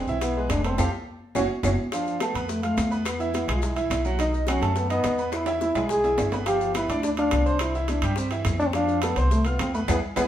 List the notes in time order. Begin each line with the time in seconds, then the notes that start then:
Already playing: C4
0.07 B1 E3 E4 E5, high conga, maracas
0.21 B3, high bongo, high timbale, maracas
0.36 G#3 G#4 B4, high conga
0.50 F1 D4, high bongo, low bongo, high timbale, low timbale, claves, maracas
0.64 A3 C4 A4 C5, high conga, high timbale, maracas
0.78 F2 C4 F4 G4 A4, low bongo, high conga, high timbale, claves, maracas
1.35 F#1 C#4 E4 F#4, low bongo, high conga, high timbale, claves, maracas
1.63 F#1 C#4 E4 F#4, low bongo, high conga, high timbale, claves, maracas
1.92 F3 D4 F4 F5, high bongo, high timbale, maracas
2.06 high bongo, high conga, maracas
2.20 A3 B3 A4 A5, high bongo, high conga, high timbale, claves, maracas
2.34 F2 B3 B4 B5, high bongo, high conga, high timbale, maracas
2.49 A3, high bongo, high conga, maracas
2.63 A3 F4 F5 F6, high bongo, high conga, high timbale, maracas
2.77 E2, high bongo, low bongo, high conga, high timbale, low timbale, claves, maracas
2.91 B3 B4 B5, maracas
3.05 B3, high bongo, high timbale, claves, maracas
3.19 E3 E4 E5, high bongo, high conga, maracas
3.34 B3, high bongo, high conga, high timbale, maracas
3.47 B1 G#3 G#4 G#5, high bongo, high conga, low conga, high timbale, claves, maracas
3.54 F4
3.62 E4, high bongo, high conga, maracas
3.76 E3 E4 E5, high bongo, high conga, high timbale, maracas
3.90 B1, high bongo, low bongo, high conga, high timbale, low timbale, claves, maracas
4.05 F#3 F#4 F#5, high conga, maracas
4.19 D#3 D#4 D#5, high bongo, high conga, high timbale, maracas
4.33 high bongo, high conga, maracas
4.47 F#3 C#4 F#4 F#5, high bongo, high conga, high timbale, claves, maracas
4.61 F#2 A3 A4 A5, high bongo, high conga, high timbale, maracas
4.76 B3, high bongo, maracas
4.89 B3 D#4 D#5 D#6, high bongo, high conga, high timbale, maracas
5.04 E2, high bongo, low bongo, high conga, high timbale, low timbale, claves, maracas
5.18 B3 B4 B5, maracas
5.32 E4, high bongo, high conga, high timbale, claves, maracas
5.46 E3 E4 E5, high bongo, high conga, high timbale, maracas
5.61 E4, high bongo, high conga, maracas
5.75 B1 G#3 G#4 G#5, high bongo, high conga, low conga, high timbale, claves, maracas
5.89 G#4, high bongo, maracas
6.03 E3 E4 E5, high bongo, high conga, low timbale, maracas
6.18 G1, high bongo, low bongo, high conga, low timbale, claves, maracas
6.32 B3 B4 B5, high conga, low timbale, maracas
6.46 F3 F4 G4 F5, high bongo, high timbale, maracas
6.60 high bongo, maracas
6.75 B3 E4 B4 B5, high bongo, high conga, high timbale, claves, maracas
6.89 D2 D4 D5 D6, high bongo, high conga, high timbale, maracas
7.03 D4, high bongo, high conga, maracas
7.17 D4 F4 F5 F6, high bongo, high timbale, maracas
7.31 C2, high bongo, low bongo, high conga, high timbale, low timbale, claves, maracas
7.46 C4 C5 C6, maracas
7.59 E4, high bongo, high conga, high timbale, claves, maracas
7.74 E3 E4 E5, high bongo, high conga, maracas
7.88 D4, high bongo, high conga, high timbale, maracas
8.02 G2 G3 G4 G5, high bongo, high conga, low conga, high timbale, claves, maracas
8.16 C4, high bongo, maracas
8.31 E3 E4 E5, high bongo, high conga, high timbale, maracas
8.45 F2, high bongo, low bongo, high conga, high timbale, low timbale, claves, maracas
8.59 A3 D4 A4 A5, high conga, maracas
8.66 C4
8.73 F3 D4 F4 F5, high bongo, high conga, high timbale, maracas
8.88 high bongo, high conga, maracas
9.02 A3 B3 A4 A5, high bongo, high conga, high timbale, claves, maracas
9.16 C2 C4 C5 C6, high bongo, high conga, high timbale, maracas
9.31 A3, high bongo, high conga, maracas
9.45 B3 F4 F5 F6, high bongo, high timbale, maracas
9.59 E2 C4, high bongo, low bongo, high conga, high timbale, low timbale, claves, maracas
9.74 A3 B3 B4 B5, high conga, maracas
9.88 E2 B3 E4 G#4 B4, low bongo, low conga, high timbale, claves, maracas
10.16 E2 B3 E4 G#4 B4, low bongo, low conga, high timbale, claves, maracas